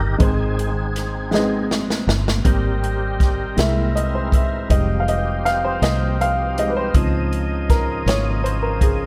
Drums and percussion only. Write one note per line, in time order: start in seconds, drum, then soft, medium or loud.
0.20 kick loud
0.20 closed hi-hat medium
0.59 closed hi-hat medium
0.96 snare soft
0.96 closed hi-hat medium
1.34 snare medium
1.71 snare medium
1.90 snare medium
2.09 snare loud
2.28 snare medium
2.45 kick medium
2.45 closed hi-hat medium
2.84 closed hi-hat soft
3.20 kick medium
3.20 snare soft
3.20 closed hi-hat soft
3.58 snare medium
3.58 closed hi-hat medium
3.97 closed hi-hat soft
4.32 kick medium
4.32 closed hi-hat medium
4.70 kick loud
4.70 closed hi-hat medium
5.08 closed hi-hat soft
5.46 snare soft
5.46 closed hi-hat soft
5.82 snare loud
5.82 closed hi-hat medium
6.21 closed hi-hat soft
6.58 closed hi-hat medium
6.94 kick loud
6.94 closed hi-hat medium
7.33 closed hi-hat soft
7.70 kick medium
7.70 snare soft
7.70 closed hi-hat soft
8.08 snare loud
8.08 closed hi-hat medium
8.46 closed hi-hat medium
8.81 kick medium
8.81 closed hi-hat medium